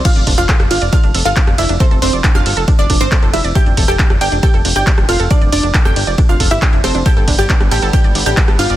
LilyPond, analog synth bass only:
\new Staff \with { instrumentName = "Analog synth bass" } { \clef bass \time 4/4 \key f \lydian \tempo 4 = 137 r16 f,,16 f,,16 f,,16 r16 f,,16 g,,16 f,,16 r16 f,,16 f,,16 g,,16 r16 f,,16 f,,16 f,,16 | r16 f,,16 f,,16 f,,16 r16 f,,16 g,,16 f,,16 r16 f,,16 f,,16 g,,16 r16 f,,16 f,,16 f,,16 | r16 f,,16 f,,16 f,,16 r16 f,,16 g,,16 f,,16 r16 f,,16 f,,16 g,,16 r16 f,,16 f,,16 f,,16 | r16 f,,16 f,,16 f,,16 r16 f,,16 g,,16 f,,16 r16 f,,16 f,,16 g,,16 r16 f,,16 f,,16 f,,16 |
r16 g,,16 g,,16 g,,16 r16 g,,16 a,,16 g,,16 r16 g,,16 g,,16 a,,16 r16 g,,16 g,,16 g,,16 | }